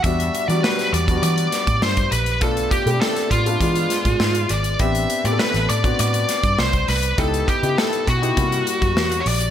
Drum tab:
HH |xxxx-xxxxxxx-xxx|xxxx-xxxxxxx-xxx|xxxx-xxxxxxx-xox|xxxx-xxxxxxx-xox|
SD |----oo----o-o---|----oo----o-o---|----oo----o-o-o-|----o-------o---|
BD |o------o---o-o--|o-o---o-o--o----|o------o---o-o--|o-o---o-o--o----|